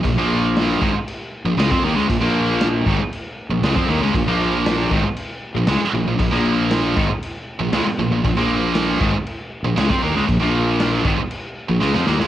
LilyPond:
<<
  \new Staff \with { instrumentName = "Distorted electric guitar" } { \clef bass \time 4/4 \key bes \minor \tempo 4 = 117 <bes, f>16 <bes, f bes>4~ <bes, f bes>16 <aes, ees>16 r4 <bes, f>16 <des aes>16 <f c'>16 <ees bes>16 <des aes>16 | <bes, f>16 <bes, f bes>4~ <bes, f bes>16 <aes, ees>16 r4 <bes, f>16 <des aes>16 <f c'>16 <ees bes>16 <des aes>16 | <bes, f>16 <bes, f bes>4~ <bes, f bes>16 <aes, ees>16 r4 <bes, f>16 <des aes>16 r16 <bes, f>16 <bes, f>16 | <bes, f>16 <bes, f bes>4~ <bes, f bes>16 <aes, ees>16 r4 <bes, f>16 <des aes>16 r16 <bes, f>16 <bes, f>16 |
<bes, f>16 <bes, f bes>4~ <bes, f bes>16 <aes, ees>16 r4 <bes, f>16 <des aes>16 <f c'>16 <ees bes>16 <des aes>16 | <bes, f>16 <bes, f bes>4~ <bes, f bes>16 <aes, ees>16 r4 <bes, f>16 <des aes>16 <f c'>16 <ees bes>16 <des aes>16 | }
  \new Staff \with { instrumentName = "Overdriven electric guitar" } { \clef bass \time 4/4 \key bes \minor <bes, f>16 <bes, f bes>4~ <bes, f bes>16 <aes, ees>16 r4 <bes, f>16 <des aes>16 <f c'>16 <ees bes>16 <des aes>16 | <bes, f>16 <bes, f bes>4~ <bes, f bes>16 <aes, ees>16 r4 <bes, f>16 <des aes>16 <f c'>16 <ees bes>16 <des aes>16 | <bes, f>16 <bes, f bes>4~ <bes, f bes>16 <aes, ees>16 r4 <bes, f>16 <des aes>16 r16 <bes, f>16 <bes, f>16 | <bes, f>16 <bes, f bes>4~ <bes, f bes>16 <aes, ees>16 r4 <bes, f>16 <des aes>16 r16 <bes, f>16 <bes, f>16 |
<bes, f>16 <bes, f bes>4~ <bes, f bes>16 <aes, ees>16 r4 <bes, f>16 <des aes>16 <f c'>16 <ees bes>16 <des aes>16 | <bes, f>16 <bes, f bes>4~ <bes, f bes>16 <aes, ees>16 r4 <bes, f>16 <des aes>16 <f c'>16 <ees bes>16 <des aes>16 | }
  \new Staff \with { instrumentName = "Fingered electric bass" } { \clef bass \time 4/4 \key bes \minor bes,,16 bes,,4~ bes,,16 aes,,16 r4 bes,,16 des,16 f,16 ees,16 des,16 | bes,,16 bes,,4~ bes,,16 aes,,16 r4 bes,,16 des,16 f,16 ees,16 des,16 | bes,,16 bes,,4~ bes,,16 aes,,16 r4 bes,,16 des,16 r16 bes,,16 bes,,16 | bes,,16 bes,,4~ bes,,16 aes,,16 r4 bes,,16 des,16 r16 bes,,16 bes,,16 |
bes,,16 bes,,4~ bes,,16 aes,,16 r4 bes,,16 des,16 f,16 ees,16 des,16 | bes,,16 bes,,4~ bes,,16 aes,,16 r4 bes,,16 des,16 f,16 ees,16 des,16 | }
  \new DrumStaff \with { instrumentName = "Drums" } \drummode { \time 4/4 <cymc bd>4 <cymc sn>8 bd8 cymc4 <cymc sn>16 bd8. | <cymc bd>4 <cymc sn>8 bd8 cymc4 <cymc sn>16 bd8. | <cymc bd>4 <cymc sn>8 bd8 cymc4 <cymc sn>4 | <cymc bd>16 sn8. <cymc sn>8 bd8 cymc4 <cymc sn>4 |
<cymc bd>16 sn8. <cymc sn>8 bd8 cymc4 <cymc sn>16 bd8. | <cymc bd>16 sn8. <cymc sn>8 bd8 cymc4 sn16 sn16 sn16 sn16 | }
>>